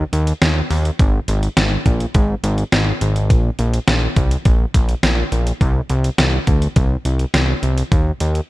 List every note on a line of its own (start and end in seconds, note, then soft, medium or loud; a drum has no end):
0.13 0.33 D#2 loud
0.13 closed hi-hat medium
0.27 closed hi-hat medium
0.42 0.62 D#2 loud
0.42 snare loud
0.42 closed hi-hat medium
0.71 0.91 D#2 loud
0.71 open hi-hat medium
0.85 closed hi-hat medium
0.99 1.20 G#1 loud
0.99 kick loud
0.99 closed hi-hat medium
1.28 1.48 G#1 loud
1.28 closed hi-hat medium
1.43 closed hi-hat medium
1.57 1.77 G#1 loud
1.57 snare loud
1.57 closed hi-hat medium
1.86 2.06 A#1 medium
1.86 kick medium
1.86 closed hi-hat medium
2.00 closed hi-hat medium
2.14 2.35 G#1 loud
2.14 kick loud
2.14 closed hi-hat medium
2.44 2.64 G#1 loud
2.44 closed hi-hat medium
2.58 closed hi-hat medium
2.72 2.93 G#1 loud
2.72 snare loud
2.72 closed hi-hat medium
3.01 3.32 G#1 loud
3.01 closed hi-hat medium
3.16 closed hi-hat medium
3.30 3.50 A#1 loud
3.30 kick loud
3.30 closed hi-hat medium
3.59 3.79 A#1 loud
3.59 closed hi-hat medium
3.74 closed hi-hat medium
3.88 4.08 A#1 loud
3.88 snare loud
3.88 closed hi-hat medium
4.16 4.37 C2 medium
4.16 kick medium
4.16 closed hi-hat medium
4.31 closed hi-hat medium
4.45 4.66 A#1 loud
4.45 kick loud
4.45 closed hi-hat medium
4.74 4.95 A#1 loud
4.74 kick medium
4.74 closed hi-hat medium
4.89 closed hi-hat medium
5.03 5.23 A#1 loud
5.03 snare loud
5.03 closed hi-hat medium
5.32 5.52 A#1 medium
5.32 closed hi-hat medium
5.47 closed hi-hat medium
5.61 5.81 C2 loud
5.61 kick loud
5.61 closed hi-hat medium
5.90 6.10 C2 loud
5.90 closed hi-hat medium
6.04 closed hi-hat medium
6.18 6.39 C2 loud
6.18 snare loud
6.18 closed hi-hat medium
6.47 6.68 D2 loud
6.47 kick medium
6.47 closed hi-hat medium
6.62 closed hi-hat medium
6.76 6.97 C2 loud
6.76 kick loud
6.76 closed hi-hat medium
7.05 7.25 C2 loud
7.05 closed hi-hat medium
7.19 closed hi-hat medium
7.34 7.54 C2 loud
7.34 snare loud
7.34 closed hi-hat medium
7.63 7.83 C2 loud
7.63 closed hi-hat medium
7.78 closed hi-hat medium
7.92 8.12 D#2 loud
7.92 kick loud
7.92 closed hi-hat medium
8.20 8.41 D#2 loud
8.20 closed hi-hat medium
8.35 closed hi-hat medium